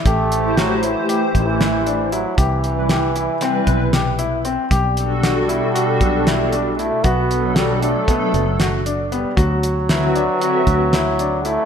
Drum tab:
HH |xxxxxxxxx|xxxxxxxxx|xxxxxxxxx|xxxxxxxxx|
SD |--o---o--|--o-o-o--|--o---o--|--o---o--|
BD |o----o---|o----o---|o----o---|o---o----|

HH |xxxxxxxxx|
SD |--o---o--|
BD |o----o---|